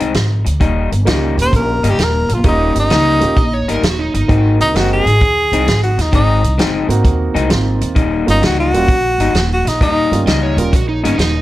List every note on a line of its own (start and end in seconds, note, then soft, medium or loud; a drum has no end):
0.00 0.14 C2 medium
0.00 0.13 D#3 medium
0.00 0.14 G#3 medium
0.00 0.14 C4 medium
0.00 0.14 D#4 medium
0.00 closed hi-hat medium
0.14 0.44 G#1 medium
0.14 muted clean electric guitar stroke soft
0.14 snare loud
0.14 closed hi-hat medium
0.45 0.60 D2 medium
0.45 muted clean electric guitar stroke soft
0.45 closed hi-hat medium
0.60 0.90 D#1 medium
0.60 0.92 D#3 medium
0.60 0.91 G3 medium
0.60 0.92 A#3 medium
0.60 0.91 D#4 medium
0.60 kick loud
0.60 closed hi-hat medium
0.92 1.06 G1 medium
0.92 muted clean electric guitar stroke soft
0.92 closed hi-hat medium
1.05 1.35 C#2 medium
1.05 1.37 D#3 medium
1.05 1.36 G3 medium
1.05 1.77 A#3 medium
1.05 1.37 A#3 medium
1.05 1.78 C#4 medium
1.05 1.36 D#4 medium
1.05 1.78 F4 medium
1.05 1.78 G4 medium
1.05 snare loud
1.05 closed hi-hat medium
1.37 1.51 D#1 medium
1.37 muted clean electric guitar stroke medium
1.37 closed hi-hat medium
1.42 1.54 C5 medium
1.51 1.82 A#1 loud
1.51 muted clean electric guitar stroke soft
1.51 kick loud
1.51 closed hi-hat medium
1.56 1.91 A#4 medium
1.83 1.98 G1 medium
1.83 1.98 D#3 medium
1.83 1.98 G3 medium
1.83 1.99 A#3 medium
1.83 1.98 D#4 medium
1.83 closed hi-hat medium
1.90 2.05 G4 medium
1.98 2.27 D#1 medium
1.98 muted clean electric guitar stroke soft
1.98 snare medium
1.98 closed hi-hat medium
2.03 2.35 A#4 medium
2.29 2.44 A#1 medium
2.29 muted clean electric guitar stroke soft
2.29 closed hi-hat medium
2.34 2.46 F4 medium
2.44 2.73 D#1 medium
2.44 2.75 D#3 medium
2.44 2.74 G3 medium
2.44 3.15 A#3 medium
2.44 2.74 A#3 medium
2.44 3.16 C#4 medium
2.44 2.74 D#4 medium
2.44 3.16 F4 medium
2.44 3.16 G4 medium
2.44 kick loud
2.44 closed hi-hat medium
2.48 2.77 D#4 medium
2.75 2.90 G1 medium
2.75 muted clean electric guitar stroke soft
2.75 closed hi-hat medium
2.80 3.67 D#4 loud
2.90 3.19 C#2 medium
2.90 3.22 D#3 medium
2.90 3.22 G3 medium
2.90 3.21 A#3 medium
2.90 3.22 D#4 medium
2.90 snare loud
2.90 closed hi-hat medium
3.20 3.35 D#1 medium
3.20 3.35 A#3 medium
3.20 3.35 C#4 medium
3.20 3.36 F4 medium
3.20 3.36 G4 medium
3.20 muted clean electric guitar stroke soft
3.20 closed hi-hat medium
3.36 3.65 A#1 medium
3.36 3.52 D#5 medium
3.36 muted clean electric guitar stroke soft
3.36 kick loud
3.36 closed hi-hat medium
3.54 3.68 C#5 medium
3.68 3.82 G1 medium
3.68 3.82 D#3 medium
3.68 3.83 G3 medium
3.68 3.83 A#3 medium
3.68 3.83 D#4 medium
3.68 3.83 A#4 medium
3.68 closed hi-hat medium
3.83 4.11 D#1 medium
3.83 3.99 F#4 medium
3.83 muted clean electric guitar stroke soft
3.83 snare loud
3.83 closed hi-hat medium
3.99 4.14 D#4 medium
4.14 4.28 G1 medium
4.14 4.54 D#4 medium
4.14 muted clean electric guitar stroke soft
4.14 closed hi-hat medium
4.28 4.58 G#1 medium
4.28 4.60 D#3 medium
4.28 4.60 G#3 medium
4.28 4.73 A#3 medium
4.28 4.73 C4 medium
4.28 4.59 C4 medium
4.28 4.73 D#4 medium
4.28 4.59 D#4 medium
4.28 4.74 F#4 medium
4.28 kick loud
4.28 closed hi-hat medium
4.60 4.74 C2 medium
4.60 4.78 D#4 loud
4.60 muted clean electric guitar stroke soft
4.60 closed hi-hat medium
4.74 5.03 F#1 medium
4.74 5.05 D#3 medium
4.74 5.06 G#3 medium
4.74 5.02 A#3 medium
4.74 5.03 C4 medium
4.74 5.05 C4 medium
4.74 5.03 D#4 medium
4.74 5.05 D#4 medium
4.74 5.03 F#4 medium
4.74 4.91 F#4 loud
4.74 snare medium
4.74 closed hi-hat medium
4.93 5.81 G#4 loud
5.06 5.19 G#1 medium
5.06 muted clean electric guitar stroke soft
5.06 closed hi-hat medium
5.21 5.50 D#2 medium
5.21 muted clean electric guitar stroke soft
5.21 kick loud
5.21 closed hi-hat medium
5.52 5.65 C2 medium
5.52 5.67 D#3 medium
5.52 5.67 G#3 medium
5.52 5.67 C4 medium
5.52 5.67 D#4 medium
5.52 closed hi-hat medium
5.66 5.95 G#1 medium
5.66 muted clean electric guitar stroke medium
5.66 snare loud
5.66 closed hi-hat medium
5.83 6.03 F#4 medium
5.98 6.11 D#2 medium
5.98 6.14 D#4 medium
5.98 muted clean electric guitar stroke soft
5.98 snare soft
5.98 closed hi-hat medium
6.12 6.42 G#1 medium
6.12 6.43 D#3 medium
6.12 6.43 G#3 medium
6.12 6.43 C4 medium
6.12 6.42 D#4 medium
6.12 6.58 D#4 medium
6.12 kick loud
6.12 closed hi-hat medium
6.43 6.57 C2 medium
6.43 closed hi-hat medium
6.58 6.87 F#1 medium
6.58 6.89 D#3 medium
6.58 6.88 G#3 medium
6.58 6.88 C4 medium
6.58 6.88 D#4 medium
6.58 snare loud
6.58 closed hi-hat medium
6.89 7.03 G#1 medium
6.89 7.47 A#3 medium
6.89 7.47 C4 medium
6.89 7.48 D#4 medium
6.89 7.48 F#4 medium
6.89 muted clean electric guitar stroke soft
6.89 closed hi-hat medium
7.03 7.33 D#2 medium
7.03 muted clean electric guitar stroke soft
7.03 kick loud
7.03 closed hi-hat medium
7.35 7.49 C2 medium
7.35 7.49 D#3 medium
7.35 7.50 G#3 medium
7.35 7.50 C4 medium
7.35 7.50 D#4 loud
7.35 closed hi-hat medium
7.49 7.79 G#1 medium
7.49 7.96 A#3 medium
7.49 7.96 C4 medium
7.49 7.96 D#4 medium
7.49 7.97 F4 medium
7.49 muted clean electric guitar stroke medium
7.49 snare loud
7.49 closed hi-hat medium
7.81 7.95 D#2 medium
7.81 muted clean electric guitar stroke medium
7.81 closed hi-hat medium
7.95 8.25 D#1 medium
7.95 8.27 D#3 medium
7.95 8.27 G3 medium
7.95 8.27 A#3 medium
7.95 8.26 D#4 medium
7.95 kick loud
7.95 closed hi-hat medium
8.27 8.41 G1 medium
8.27 8.40 G3 medium
8.27 8.40 A#3 medium
8.27 8.41 C#4 medium
8.27 8.44 D#4 loud
8.27 8.41 F4 medium
8.27 muted clean electric guitar stroke medium
8.27 closed hi-hat medium
8.42 8.71 C#2 medium
8.42 8.73 D#3 medium
8.42 8.73 G3 medium
8.42 8.72 A#3 medium
8.42 8.72 D#4 medium
8.42 snare loud
8.42 closed hi-hat medium
8.46 8.59 F#4 medium
8.60 9.48 F#4 loud
8.73 8.87 D#1 medium
8.73 8.87 G3 medium
8.73 8.87 A#3 medium
8.73 8.88 C#4 medium
8.73 8.88 F4 medium
8.73 muted clean electric guitar stroke soft
8.73 closed hi-hat medium
8.88 9.17 A#1 medium
8.88 muted clean electric guitar stroke soft
8.88 kick loud
8.88 closed hi-hat medium
9.18 9.32 G1 medium
9.18 9.33 D#3 medium
9.18 9.33 G3 medium
9.18 9.34 A#3 medium
9.18 9.34 D#4 medium
9.18 closed hi-hat medium
9.34 9.63 D#1 medium
9.34 muted clean electric guitar stroke soft
9.34 snare loud
9.34 closed hi-hat medium
9.53 9.70 F#4 medium
9.65 9.79 A#1 medium
9.65 9.81 D#4 medium
9.65 muted clean electric guitar stroke soft
9.65 snare soft
9.65 closed hi-hat medium
9.81 10.09 D#1 medium
9.81 10.12 D#3 medium
9.81 10.12 G3 medium
9.81 10.12 A#3 medium
9.81 10.12 D#4 medium
9.81 10.26 D#4 medium
9.81 kick loud
9.81 closed hi-hat medium
10.11 10.25 G1 medium
10.11 10.25 G3 medium
10.11 10.25 A#3 medium
10.11 10.25 C#4 medium
10.11 10.25 F4 medium
10.11 muted clean electric guitar stroke medium
10.11 closed hi-hat medium
10.26 10.55 C#2 medium
10.26 10.58 D#3 medium
10.26 10.58 G3 medium
10.26 10.58 A#3 medium
10.26 10.57 D#4 medium
10.26 10.42 D#5 medium
10.26 snare medium
10.26 closed hi-hat medium
10.43 10.57 C#5 medium
10.57 10.71 D#1 medium
10.57 10.71 G3 medium
10.57 10.71 A#3 medium
10.57 10.71 C#4 medium
10.57 10.72 F4 medium
10.57 10.72 A#4 medium
10.57 muted clean electric guitar stroke medium
10.57 closed hi-hat medium
10.72 11.01 A#1 medium
10.72 10.88 F#4 medium
10.72 muted clean electric guitar stroke soft
10.72 kick loud
10.72 closed hi-hat medium
10.89 11.03 D#4 medium
11.04 11.18 G1 medium
11.04 11.17 D#3 medium
11.04 11.17 G3 medium
11.04 11.18 A#3 medium
11.04 11.19 C#4 medium
11.04 11.18 D#4 medium
11.04 closed hi-hat medium
11.18 11.42 D#1 medium
11.18 11.42 D#4 medium
11.18 muted clean electric guitar stroke soft
11.18 snare medium
11.18 closed hi-hat medium